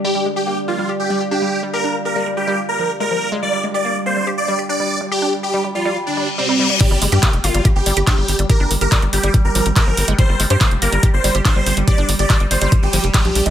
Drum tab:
CC |----------------|----------------|----------------|----------------|
HH |----------------|----------------|----------------|----------------|
CP |----------------|----------------|----------------|----------------|
BD |----------------|----------------|----------------|----------------|

CC |x---------------|----------------|----------------|----------------|
HH |x-oxxxoxx-oxx-ox|x-oxxxoxx-oxx-ox|x-oxxxoxx-oxx-ox|xxoxxxoxx-oxxxox|
CP |----x-------x---|----x-------x---|----x-------x---|----x-------x---|
BD |o---o---o---o---|o---o---o---o---|o---o---o---o---|o---o---o---o---|